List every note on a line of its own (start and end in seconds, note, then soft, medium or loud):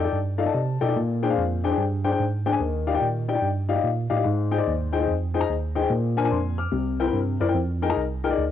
0.05 0.16 D#4 medium
0.05 0.16 A4 medium
0.05 0.16 D5 medium
0.05 0.16 G5 medium
0.12 0.47 G2 medium
0.38 0.43 D#4 medium
0.38 0.43 A4 medium
0.38 0.43 D5 medium
0.38 0.43 F5 medium
0.46 0.57 D#4 medium
0.46 0.57 A4 medium
0.46 0.57 D5 medium
0.46 0.52 A5 medium
0.54 0.77 C3 medium
0.54 0.79 A5 medium
0.81 0.94 B2 medium
0.81 0.85 D#4 medium
0.81 0.85 A4 medium
0.81 0.85 D5 medium
0.81 0.86 G5 medium
0.88 0.95 D#4 medium
0.88 0.95 A4 medium
0.88 0.95 D5 medium
0.88 0.95 G5 medium
0.96 1.36 A#2 loud
0.96 1.60 A#2 medium
1.23 1.27 D4 medium
1.23 1.27 G#4 medium
1.23 1.27 C5 medium
1.23 1.27 G5 medium
1.30 1.40 D4 medium
1.30 1.40 G#4 medium
1.30 1.41 C5 medium
1.30 1.41 F5 medium
1.37 1.72 F2 medium
1.64 1.68 D4 medium
1.64 1.68 G#4 medium
1.64 1.68 C5 medium
1.64 1.68 G5 medium
1.71 1.81 D4 medium
1.71 1.82 G#4 medium
1.71 1.82 C5 medium
1.71 1.82 G5 medium
1.78 2.12 G2 loud
2.04 2.09 D4 medium
2.04 2.09 G#4 medium
2.04 2.09 C5 medium
2.04 2.09 G5 medium
2.11 2.22 D4 medium
2.11 2.22 G#4 medium
2.11 2.22 C5 medium
2.11 2.22 G5 medium
2.20 2.54 G#2 medium
2.46 2.50 D4 medium
2.46 2.50 G#4 medium
2.46 2.50 C5 medium
2.46 2.50 G5 medium
2.52 2.59 D4 medium
2.52 2.59 G#4 medium
2.52 2.59 C5 medium
2.52 2.59 G#5 medium
2.60 2.95 D#2 medium
2.60 3.24 D#3 medium
2.87 2.91 D#4 medium
2.87 2.91 G4 medium
2.87 2.91 D5 medium
2.87 2.91 F5 medium
2.94 3.05 D#4 medium
2.94 3.05 G4 medium
2.94 3.05 D5 medium
2.94 3.05 G5 medium
3.01 3.36 A#2 medium
3.28 3.33 D#4 medium
3.28 3.33 G4 medium
3.28 3.33 D5 medium
3.28 3.33 G5 medium
3.34 3.46 D#4 medium
3.34 3.46 G4 medium
3.34 3.46 D5 medium
3.34 3.46 G5 medium
3.42 3.77 G2 medium
3.69 3.73 D#4 medium
3.69 3.74 G4 medium
3.69 3.74 D5 medium
3.69 3.74 F5 medium
3.76 3.87 D#4 medium
3.76 3.87 G4 medium
3.76 3.87 D5 medium
3.76 3.87 F5 medium
3.84 4.07 A#2 medium
4.10 4.23 A2 medium
4.10 4.15 D#4 medium
4.10 4.15 G4 medium
4.10 4.15 D5 medium
4.10 4.15 F5 medium
4.16 4.24 D#4 medium
4.16 4.24 G4 medium
4.16 4.24 D5 medium
4.16 4.24 F5 medium
4.24 4.89 G#2 medium
4.24 4.60 G#2 medium
4.51 4.56 D#4 medium
4.51 4.56 G#4 medium
4.51 4.56 C5 medium
4.51 4.56 G5 medium
4.58 4.70 D#4 medium
4.58 4.69 G#4 medium
4.58 4.69 C5 medium
4.58 4.69 D5 medium
4.67 5.08 D#2 medium
4.92 4.97 D#4 medium
4.92 4.97 G#4 medium
4.92 4.97 C5 medium
4.92 4.97 G5 medium
5.00 5.11 D#4 medium
5.00 5.11 G#4 medium
5.00 5.11 C5 medium
5.00 5.11 G5 medium
5.08 5.42 F2 medium
5.34 5.39 D#4 medium
5.34 5.39 G#4 medium
5.34 5.39 C5 medium
5.34 5.39 G5 medium
5.40 5.52 D#4 medium
5.40 5.52 G#4 medium
5.40 5.52 C5 medium
5.40 5.52 A#5 medium
5.49 5.84 D#2 medium
5.75 5.80 D#4 medium
5.75 5.80 G#4 medium
5.75 5.80 C5 medium
5.75 5.80 G5 medium
5.82 5.89 D#4 medium
5.82 5.89 G#4 medium
5.82 5.89 C5 medium
5.82 5.89 G5 medium
5.90 6.54 A#2 medium
5.90 6.31 A#2 medium
6.17 6.21 D4 medium
6.17 6.22 A#4 medium
6.17 6.22 C5 medium
6.17 6.22 G#5 medium
6.24 6.35 D4 medium
6.24 6.35 A#4 medium
6.24 6.35 C5 medium
6.24 6.30 G#5 medium
6.31 6.66 F2 medium
6.31 6.57 G#5 medium
6.31 6.57 C6 medium
6.58 6.98 D6 medium
6.58 6.97 F6 medium
6.72 7.07 C2 loud
6.72 7.36 C3 medium
7.00 7.04 E4 medium
7.00 7.04 A#4 medium
7.00 7.04 C5 medium
7.00 7.04 G5 medium
7.06 7.18 E4 medium
7.06 7.18 A#4 medium
7.06 7.18 C5 medium
7.06 7.18 G5 medium
7.13 7.36 G2 medium
7.40 7.53 F#2 medium
7.40 7.45 E4 medium
7.40 7.45 A#4 medium
7.40 7.45 C5 medium
7.40 7.45 D5 medium
7.48 7.55 E4 medium
7.48 7.55 A#4 medium
7.48 7.55 C5 medium
7.48 7.55 G5 medium
7.54 7.90 F2 medium
7.82 7.87 D#4 medium
7.82 7.87 G#4 medium
7.82 7.87 A#4 medium
7.82 7.87 G5 medium
7.89 8.00 D#4 medium
7.89 8.00 G#4 medium
7.89 8.00 A#4 medium
7.89 8.00 A#5 medium
7.96 8.31 C2 medium
8.24 8.28 D#4 medium
8.24 8.28 G#4 medium
8.24 8.28 A#4 medium
8.24 8.28 G5 medium
8.30 8.41 D#4 medium
8.30 8.42 G#4 medium
8.30 8.41 A#4 medium
8.30 8.42 D5 medium
8.38 8.52 D2 medium